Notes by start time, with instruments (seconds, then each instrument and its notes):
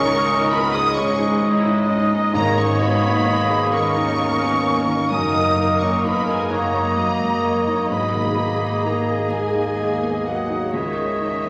Already playing: double bass section C#2, felt piano C#2 C#5, cello section C#3, harp C#3 G#3 D#4 G#4 D#5 G#5, clarinet G#3, french horn section C#4, viola section A#4, oboe D#5, violin section D#5 C#6, flute C#6
0.05 felt piano D#4, violin section D#4
0.29 felt piano C#4, violin section E4
0.51 french horn section B3, felt piano D#4, violin section D#4 B5, harp G#4, flute B5
0.74 violin section C#4 D#6, french horn section D#4, felt piano G#4, harp C#5, flute D#6
0.96 double bass section G#1, cello section G#2, clarinet G#3, violin section G#3 C#6, french horn section C#4, viola section G#4, felt piano C#5, harp D#5, oboe D#5, flute C#6
1.19 violin section C#4, felt piano D#4, harp G#5
1.42 felt piano C#4, violin section D#4, viola section E4, harp D#5
1.64 felt piano D#4, violin section E4, harp C#5
1.88 felt piano C#4, harp D#4, violin section D#4, viola section D#5
2.11 harp G#3, violin section C#4, felt piano D#4
2.33 double bass section G#1, felt piano G#2, harp G#2, cello section G#2, timpani G#2, clarinet A#3, french horn section A#3, viola section C#5, oboe D#5, violin section A#5, flute A#5
2.38 violin section G#3
2.57 harp D#3, violin section A#3 C#6, french horn section C#4, felt piano A#4, flute C#6
2.81 french horn section B2, harp A#3, violin section B3 B5, felt piano D#4, flute B5
3.03 felt piano A#3, harp D#4, violin section D#4
3.26 violin section B3, felt piano D#4, harp G#4
3.50 violin section A#3, felt piano G#4
3.73 double bass section D#2, cello section D#2, violin section G#3 C#6, french horn section C#4, felt piano A#4, viola section A#4, flute C#6
3.95 violin section A#3, felt piano D#4, harp G#5
4.20 felt piano A#3, violin section B3
4.41 felt piano B3, violin section D#4
4.64 felt piano A#3, violin section B3
4.87 harp D#3, violin section A#3, felt piano D#4
5.10 double bass section F#1, harp F#2, cello section F#2, felt piano F#2, clarinet A#3, violin section A#3 D#5 D#6, french horn section D#4, viola section A#4, oboe D#5, flute D#6
5.34 harp F#3, violin section D#4, felt piano A#4
5.56 harp A#3, felt piano D#4
5.60 violin section A#3
5.80 felt piano A#3, french horn section C#4, violin section D#4 C#6, harp F#4, flute C#6
6.04 violin section A#3 B5, french horn section B3, felt piano D#4, flute B5
6.26 french horn section G#3, violin section D#4, felt piano A#4, flute G#5
6.30 violin section G#5
6.48 double bass section F#1, cello section F#2, clarinet A#3, violin section A#3 A#5, french horn section A#3, felt piano D#4, viola section C#5, oboe D#5, harp F#5, flute A#5
6.72 felt piano A#3, violin section D#4
6.96 felt piano F#3, violin section A#3, viola section D#5
7.18 felt piano G#3, violin section D#4
7.40 violin section A#3, felt piano A#3, viola section C#5
7.65 harp F#3, violin section D#4, felt piano D#4
7.88 double bass section G#1, harp G#2, cello section G#2, felt piano G#2, french horn section B2, violin section G#3 B5, clarinet A#3, viola section G#4, oboe D#5, flute B5
8.12 harp D#3, violin section A#3, felt piano A#3
8.35 harp A#3, violin section B3, felt piano D#4
8.60 felt piano A#3, violin section D#4
8.83 french horn section A#3, violin section B3 A#5, felt piano D#4, harp G#4, flute A#5
9.06 violin section A#3, felt piano G#4, harp A#4
9.28 double bass section D#2, cello section D#2, french horn section G#3, violin section G#3, clarinet A#3, felt piano A#4, oboe D#5, flute G#5
9.33 violin section G#5
9.53 violin section A#3, felt piano D#4, harp G#5
9.77 felt piano A#3, violin section B3
10.01 felt piano B3, violin section D#4, harp A#4
10.24 french horn section F#3, felt piano A#3, violin section B3 F#5, flute F#5
10.49 harp D#3, violin section A#3, felt piano D#4
10.71 felt piano C#2, double bass section C#2, harp C#3, cello section C#3, french horn section D#3, clarinet G#3, viola section C#5, oboe D#5, flute E5, violin section E5
10.76 violin section G#3 D#5
10.97 harp C#4, violin section C#4, felt piano G#4
11.21 felt piano D#3, harp G#3, violin section D#4
11.45 harp D#3, felt piano G#3